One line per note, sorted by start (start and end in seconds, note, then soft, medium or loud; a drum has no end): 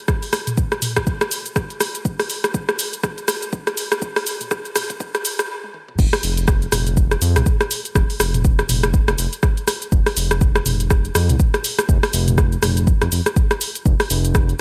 0.08 kick loud
0.08 cross-stick medium
0.08 shaker medium
0.23 open hi-hat medium
0.23 shaker soft
0.33 cross-stick loud
0.33 open hi-hat medium
0.33 shaker medium
0.47 closed hi-hat medium
0.47 mid tom medium
0.47 shaker soft
0.57 kick loud
0.57 shaker medium
0.72 cross-stick medium
0.72 closed hi-hat soft
0.72 shaker soft
0.82 mid tom medium
0.82 open hi-hat medium
0.82 shaker loud
0.96 kick medium
0.96 cross-stick loud
0.96 closed hi-hat medium
0.96 shaker soft
1.07 kick loud
1.07 shaker medium
1.21 cross-stick loud
1.21 closed hi-hat soft
1.21 shaker soft
1.31 open hi-hat medium
1.31 shaker medium
1.46 closed hi-hat medium
1.46 shaker soft
1.56 kick loud
1.56 cross-stick medium
1.56 shaker medium
1.70 closed hi-hat soft
1.70 shaker soft
1.80 cross-stick medium
1.80 open hi-hat medium
1.80 shaker medium
1.95 closed hi-hat medium
1.95 shaker soft
2.05 kick loud
2.05 shaker medium
2.20 cross-stick medium
2.20 open hi-hat medium
2.20 shaker soft
2.30 open hi-hat medium
2.30 shaker medium
2.44 cross-stick medium
2.44 closed hi-hat medium
2.44 shaker soft
2.54 kick loud
2.54 shaker medium
2.69 cross-stick medium
2.69 closed hi-hat soft
2.69 shaker soft
2.79 open hi-hat medium
2.79 shaker loud
2.93 closed hi-hat medium
2.93 shaker soft
3.04 kick loud
3.04 cross-stick medium
3.04 shaker medium
3.18 closed hi-hat soft
3.18 shaker soft
3.28 cross-stick loud
3.28 open hi-hat medium
3.28 shaker loud
3.42 closed hi-hat medium
3.42 shaker soft
3.53 kick loud
3.53 shaker medium
3.67 cross-stick medium
3.67 closed hi-hat soft
3.67 shaker soft
3.77 open hi-hat medium
3.77 shaker medium
3.92 cross-stick loud
3.92 closed hi-hat medium
3.92 shaker soft
4.02 kick loud
4.02 shaker medium
4.16 cross-stick loud
4.16 open hi-hat soft
4.16 shaker soft
4.27 open hi-hat medium
4.27 shaker medium
4.41 closed hi-hat medium
4.41 mid tom medium
4.41 shaker soft
4.51 kick loud
4.51 cross-stick medium
4.51 shaker medium
4.65 closed hi-hat soft
4.65 shaker soft
4.76 cross-stick loud
4.76 mid tom medium
4.76 open hi-hat medium
4.76 shaker loud
4.90 kick medium
4.90 closed hi-hat medium
4.90 shaker soft
5.00 kick loud
5.00 shaker medium
5.15 cross-stick medium
5.15 closed hi-hat soft
5.15 shaker soft
5.25 open hi-hat medium
5.25 shaker loud
5.39 cross-stick medium
5.39 closed hi-hat medium
5.39 shaker soft
5.64 high tom medium
5.74 mid tom medium
5.88 mid tom medium
5.99 6.08 F1 loud
5.99 kick loud
5.99 crash loud
5.99 shaker medium
6.13 cross-stick loud
6.13 open hi-hat medium
6.13 shaker soft
6.23 6.66 F1 medium
6.23 open hi-hat medium
6.23 shaker medium
6.37 closed hi-hat medium
6.37 shaker soft
6.48 kick loud
6.48 cross-stick medium
6.48 shaker medium
6.62 closed hi-hat soft
6.62 shaker soft
6.72 7.15 F1 medium
6.72 cross-stick medium
6.72 mid tom medium
6.72 open hi-hat loud
6.72 shaker medium
6.87 closed hi-hat medium
6.87 shaker soft
6.97 kick loud
6.97 shaker medium
7.11 cross-stick medium
7.11 closed hi-hat soft
7.11 shaker soft
7.22 7.37 F2 medium
7.22 open hi-hat medium
7.22 shaker medium
7.36 7.42 C2 loud
7.36 cross-stick medium
7.36 closed hi-hat medium
7.36 mid tom medium
7.36 shaker soft
7.46 kick loud
7.46 shaker medium
7.61 cross-stick medium
7.61 closed hi-hat soft
7.61 shaker soft
7.71 open hi-hat medium
7.71 shaker medium
7.85 closed hi-hat medium
7.85 shaker soft
7.95 8.04 F1 loud
7.95 kick loud
7.95 cross-stick medium
7.95 shaker medium
8.10 open hi-hat medium
8.10 shaker soft
8.20 8.63 F1 medium
8.20 cross-stick loud
8.20 open hi-hat medium
8.20 shaker loud
8.34 closed hi-hat medium
8.34 mid tom medium
8.34 shaker soft
8.45 kick loud
8.45 shaker medium
8.59 cross-stick medium
8.59 closed hi-hat soft
8.59 shaker soft
8.69 8.99 F1 medium
8.69 mid tom medium
8.69 open hi-hat medium
8.69 shaker loud
8.83 cross-stick loud
8.83 closed hi-hat medium
8.83 shaker soft
8.94 kick loud
8.94 shaker medium
9.08 9.14 F1 loud
9.08 cross-stick loud
9.08 closed hi-hat soft
9.08 shaker soft
9.18 9.27 F1 medium
9.18 open hi-hat medium
9.18 shaker medium
9.33 closed hi-hat medium
9.33 shaker soft
9.43 kick loud
9.43 cross-stick medium
9.43 shaker medium
9.57 closed hi-hat soft
9.57 shaker soft
9.68 cross-stick medium
9.68 open hi-hat medium
9.68 shaker loud
9.82 closed hi-hat medium
9.82 shaker soft
9.92 10.01 F1 loud
9.92 kick loud
9.92 shaker medium
10.06 cross-stick medium
10.06 open hi-hat medium
10.06 shaker soft
10.17 10.60 F1 medium
10.17 open hi-hat medium
10.17 shaker medium
10.31 cross-stick medium
10.31 closed hi-hat medium
10.31 shaker soft
10.41 kick loud
10.41 shaker medium
10.56 cross-stick loud
10.56 closed hi-hat soft
10.56 shaker soft
10.66 11.09 F1 medium
10.66 mid tom medium
10.66 open hi-hat medium
10.66 shaker loud
10.80 closed hi-hat medium
10.80 shaker soft
10.90 kick loud
10.90 cross-stick medium
10.90 shaker medium
11.05 closed hi-hat soft
11.05 shaker soft
11.15 11.31 F2 medium
11.15 cross-stick loud
11.15 open hi-hat medium
11.15 shaker loud
11.29 11.36 C2 loud
11.29 closed hi-hat medium
11.29 mid tom medium
11.29 shaker soft
11.40 kick loud
11.40 shaker medium
11.54 cross-stick medium
11.54 closed hi-hat soft
11.54 shaker soft
11.64 open hi-hat medium
11.64 shaker medium
11.79 cross-stick loud
11.79 closed hi-hat medium
11.79 shaker soft
11.89 11.98 F1 loud
11.89 kick loud
11.89 shaker medium
12.03 cross-stick loud
12.03 open hi-hat medium
12.03 shaker soft
12.13 12.57 F1 medium
12.13 open hi-hat medium
12.13 shaker medium
12.28 closed hi-hat medium
12.28 mid tom medium
12.28 shaker soft
12.38 kick loud
12.38 cross-stick medium
12.38 shaker medium
12.52 closed hi-hat soft
12.52 shaker soft
12.63 12.93 F1 medium
12.63 cross-stick medium
12.63 mid tom medium
12.63 open hi-hat medium
12.63 shaker loud
12.77 closed hi-hat medium
12.77 shaker soft
12.87 kick loud
12.87 shaker medium
13.02 13.08 F1 loud
13.02 cross-stick medium
13.02 closed hi-hat soft
13.02 shaker soft
13.12 13.21 F1 medium
13.12 open hi-hat medium
13.12 shaker loud
13.26 cross-stick medium
13.26 closed hi-hat medium
13.26 shaker soft
13.36 kick loud
13.36 shaker medium
13.51 cross-stick medium
13.51 closed hi-hat soft
13.51 shaker soft
13.61 open hi-hat medium
13.61 shaker medium
13.75 closed hi-hat medium
13.75 shaker soft
13.86 13.95 F1 loud
13.86 kick loud
13.86 shaker medium
14.00 cross-stick medium
14.00 open hi-hat medium
14.00 shaker soft
14.10 14.53 F1 medium
14.10 open hi-hat medium
14.10 shaker medium
14.25 closed hi-hat medium
14.25 shaker soft
14.35 kick loud
14.35 cross-stick medium
14.35 shaker medium
14.49 closed hi-hat soft
14.49 shaker soft